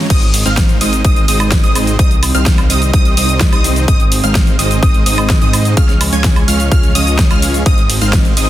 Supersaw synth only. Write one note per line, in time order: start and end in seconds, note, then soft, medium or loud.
0.10 0.25 G#3 loud
0.10 0.25 C4 medium
0.10 0.25 D#4 medium
0.10 0.25 C5 medium
0.10 0.25 D#5 loud
0.46 0.78 G#3 medium
0.46 0.78 C4 medium
0.46 0.78 D#4 medium
0.46 0.78 C5 medium
0.46 0.78 F5 medium
0.81 1.02 G#3 medium
0.81 1.02 C4 medium
0.81 1.02 D#4 medium
0.81 1.02 C5 medium
0.81 1.02 D#5 medium
1.05 1.25 G#3 loud
1.05 1.25 C4 medium
1.05 1.25 D#4 medium
1.05 1.25 C5 medium
1.05 1.25 D#5 loud
1.28 1.61 G#3 medium
1.28 1.61 C4 medium
1.28 1.61 D#4 medium
1.28 1.61 C5 medium
1.28 1.61 D#5 loud
1.64 1.96 G#3 medium
1.64 1.96 C4 medium
1.64 1.96 D#4 medium
1.64 1.96 C5 medium
1.64 1.96 D#5 medium
1.99 2.14 G3 loud
1.99 2.14 C4 medium
1.99 2.14 D#4 medium
1.99 2.14 C5 medium
1.99 2.14 D#5 loud
2.34 2.67 G3 medium
2.34 2.67 C4 medium
2.34 2.67 D#4 medium
2.34 2.67 C5 medium
2.34 2.67 F5 medium
2.70 2.91 G3 medium
2.70 2.91 C4 medium
2.70 2.91 D#4 medium
2.70 2.91 C5 medium
2.70 2.91 D#5 medium
3.17 3.50 G3 medium
3.17 3.50 C4 medium
3.17 3.50 D#4 medium
3.17 3.50 C5 medium
3.17 3.50 D#5 loud
3.53 3.85 G3 medium
3.53 3.85 C4 medium
3.53 3.85 D#4 medium
3.53 3.85 C5 medium
3.53 3.85 D#5 medium
3.88 4.03 G#3 loud
3.88 4.03 C4 medium
3.88 4.03 C5 medium
4.23 4.56 G#3 medium
4.23 4.56 C4 medium
4.23 4.56 D#4 medium
4.23 4.56 C5 medium
4.23 4.56 F5 medium
4.59 4.80 G#3 medium
4.59 4.80 C4 medium
4.59 4.80 D#4 medium
4.59 4.80 C5 medium
4.59 4.80 D#5 medium
4.83 5.03 C4 medium
4.83 5.03 C5 medium
5.06 5.39 G#3 medium
5.06 5.39 C4 medium
5.06 5.39 D#4 medium
5.06 5.39 C5 medium
5.06 5.39 D#5 loud
5.42 5.74 G#3 medium
5.42 5.74 C4 medium
5.42 5.74 D#4 medium
5.42 5.74 C5 medium
5.42 5.74 D#5 loud
6.13 6.45 G#3 medium
6.13 6.45 C#4 medium
6.13 6.45 F4 medium
6.13 6.45 C#5 medium
6.13 6.45 G#5 medium
6.48 6.69 G#3 medium
6.48 6.69 C#4 medium
6.48 6.69 F4 medium
6.48 6.69 C#5 medium
6.48 6.69 F5 medium
6.72 6.92 G#3 loud
6.72 6.92 C#4 medium
6.72 6.92 F4 medium
6.72 6.92 C#5 medium
6.72 6.92 F5 loud
6.95 7.28 G#3 medium
6.95 7.28 C#4 medium
6.95 7.28 F4 medium
6.95 7.28 C#5 medium
6.95 7.28 D#5 loud
7.31 7.63 G#3 medium
7.31 7.63 C#4 medium
7.31 7.63 F4 medium
7.31 7.63 C#5 medium
7.31 7.63 F5 medium
7.66 7.81 C4 medium
7.66 7.81 C5 medium
8.02 8.34 G#3 medium
8.02 8.34 C4 medium
8.02 8.34 D#4 medium
8.02 8.34 C5 medium
8.02 8.34 F5 medium
8.37 8.49 G#3 medium
8.37 8.49 C4 medium
8.37 8.49 D#4 medium
8.37 8.49 C5 medium
8.37 8.49 D#5 medium